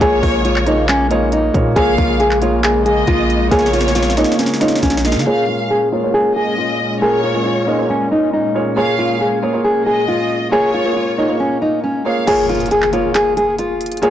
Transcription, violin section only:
0.01 0.85 C#5 loud
1.76 2.18 F5 loud
2.85 3.47 D#5 medium
3.51 4.35 C#5 loud
5.05 5.25 F5 medium
5.26 5.68 F5 loud
6.36 6.98 D#5 medium
7.02 7.85 C#5 loud
8.77 9.18 F5 loud
9.86 10.48 D#5 medium
10.52 11.36 C#5 loud
12.06 12.26 F5 medium

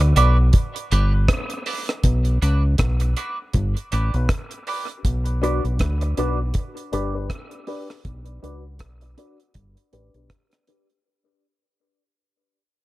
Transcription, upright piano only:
0.15 0.33 D4 medium
0.15 0.33 F#4 medium
0.15 0.33 B4 medium
0.91 1.08 D4 medium
0.91 1.08 G4 medium
0.91 1.08 B4 loud
1.13 1.25 D4 medium
1.13 1.25 G4 medium
1.13 1.26 B4 medium
1.66 1.83 D4 medium
1.66 1.84 G4 medium
1.66 1.84 B4 medium
2.41 2.58 D4 medium
2.41 2.59 F#4 medium
2.41 2.59 B4 medium
3.16 3.33 D4 medium
3.16 3.34 F#4 medium
3.16 3.34 B4 medium
3.91 4.09 D4 medium
3.91 4.09 G4 medium
3.91 4.09 B4 loud
4.13 4.26 D4 medium
4.13 4.26 G4 medium
4.13 4.26 B4 medium
4.67 4.84 D4 medium
4.67 4.84 G4 medium
4.67 4.84 B4 medium
5.41 5.59 D4 medium
5.41 5.59 F#4 medium
5.41 5.59 B4 medium
6.17 6.34 D4 medium
6.17 6.34 F#4 medium
6.17 6.35 B4 medium
6.92 7.09 D4 medium
6.92 7.10 G4 medium
6.92 7.10 B4 loud
7.14 7.26 D4 medium
7.14 7.26 G4 medium
7.14 7.27 B4 medium
7.67 7.84 D4 medium
7.67 7.85 G4 medium
7.67 7.85 B4 medium
8.42 8.59 D4 medium
8.42 8.60 F#4 medium
8.42 8.60 B4 medium
9.17 9.34 D4 medium
9.17 9.35 F#4 medium
9.17 9.35 B4 medium
9.92 10.10 D4 medium
9.92 10.10 G4 medium
9.92 10.10 B4 loud
10.14 10.27 D4 medium
10.14 10.27 G4 medium
10.14 10.27 B4 medium
10.67 10.85 D4 medium
10.67 10.85 G4 medium
10.67 10.85 B4 loud

